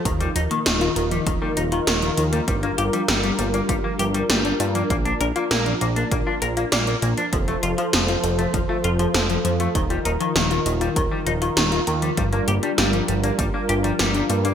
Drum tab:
HH |xxxxxxxxx-xxxxxx|xxxxxxxxx-xxxxxx|xxxxxxxxx-xxxxxx|xxxxxxxxx-xxxxxx|
SD |----o-------o---|----o-------o---|----o-------o---|----o-------o---|
BD |o-------o-------|o-------o-------|o-------o-------|o-------o-------|

HH |xxxxxxxxx-xxxxxx|xxxxxxxxx-xxxxxx|
SD |----o-------o---|----o-------o---|
BD |o-------o-------|o-------o-------|